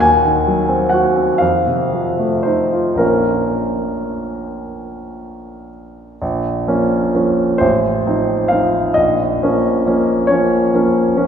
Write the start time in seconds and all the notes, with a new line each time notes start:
0.00 D#2 G#5
0.25 D#3
0.47 F#3
0.69 C4
0.89 F#4 F#5
1.16 C4
1.38 F2 F5
1.67 C3
1.93 F3
2.19 A3
2.43 D#4 C5
2.73 F4
2.95 A#1 F3 A#3 A#4
2.99 C#4
6.22 A#1
6.67 F3 A#3 C#4
7.14 F3 A#3 C#4
7.58 A1 C5
8.06 F3 C4 D#4
8.48 F3 C4 D#4 F5
8.94 A#1 D#5
9.42 F3 A#3 C#4
9.86 F3 A#3 C#4
10.27 F3 A#3 C#5
10.31 C#4
10.74 F3 A#3 C#4
11.16 F3 A#3 C#4